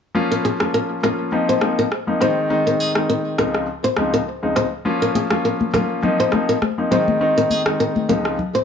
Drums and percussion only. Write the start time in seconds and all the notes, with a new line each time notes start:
0.60 cross-stick
1.03 cross-stick
1.61 cross-stick
1.92 cross-stick
2.95 cross-stick
3.38 cross-stick
3.55 cross-stick
3.97 cross-stick
4.56 cross-stick
5.15 high conga
5.30 cross-stick
5.61 high conga
5.74 cross-stick, high conga, low conga
6.03 low conga
6.32 cross-stick, high conga
6.62 cross-stick, high conga
6.91 low conga
7.08 high conga
7.50 high conga
7.66 cross-stick
7.96 high conga
8.09 high conga, low conga
8.25 cross-stick
8.39 low conga